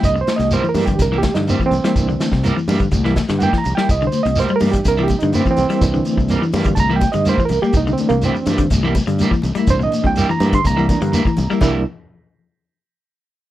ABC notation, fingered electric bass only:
X:1
M:4/4
L:1/16
Q:1/4=124
K:Cmix
V:1 name="Fingered electric bass" clef=bass
C,,2 z C,,2 z G,,2 C,,3 G,,2 z C,, z | C,,2 z C,,2 z G,,2 C,,3 G,,2 z C,, z | C,,2 z C,,2 z G,,2 C,,3 G,,2 z C,, z | C,,2 z C,,2 z G,,2 C,,3 G,,2 z C,, z |
C,,2 z C,,2 z G,,2 C,,3 G,,2 z C,, z | C,,2 z C,,2 z G,,2 C,,3 G,,2 z C,, z | C,,2 z12 z2 |]